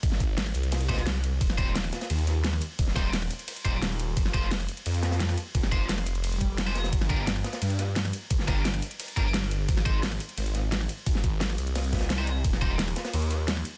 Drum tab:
RD |x-------x-------x-------x-------|x-------x-------x-------x-------|x-------x-------x-------x-------|x-------x-------x-------x-------|
HH |x---x---x-x-x-x-x-x-xxx-x---x---|x---x---x-x-x-x-x-x-x---x---x---|x---x---x-x-x-x-x-x-x---x---x---|x---x---x-x-x-x-x-x-x-x-x-x-x---|
SD |--o-----o-o-----o---ooo-o-------|--o-----o-o-o-o-----o---o-o-----|--o-o---o-o-------------o-------|--o-----o-o---------o-o-o-o-----|
BD |o---o---------------o-----------|o---o---------------------------|o---o---------------o-----------|o---o---------------------------|

RD |x-------x-------x-------x-------|x-------x-------x-------x-------|x-------x-------x-------x-------|x-------x-------x-------x-------|
HH |x---x---x-x-x-x-x-x-x---x-x-x-x-|x---x---x-x-x-x-x-x-x---x---x---|x---x-x-x-x-x-x-x-x-x---x---x---|x---x---x-x-x-x-x-x-x---x---x-x-|
SD |--o-----o-o-------------o---o-o-|--o-----o-o-o-o-----o---o-o-----|--o-o---o-o-------------o-------|--o-----o-o---------o---o-o-----|
BD |o---o---------------o-----------|o---o---------------------------|o---o---------------o-----------|o---o---------------------------|

RD |x-------x-------x-------x-------|x-------x-------x-------x-------|
HH |x---x---x-x-x-x-x-x-xxx-x---x---|x---x---x-x-x-x-x-x-x---x---x---|
SD |--o-----o-o-----o---ooo-o-------|--o-----o-o-o-o-----o---o-o-----|
BD |o---o---------------o-----------|o---o---------------------------|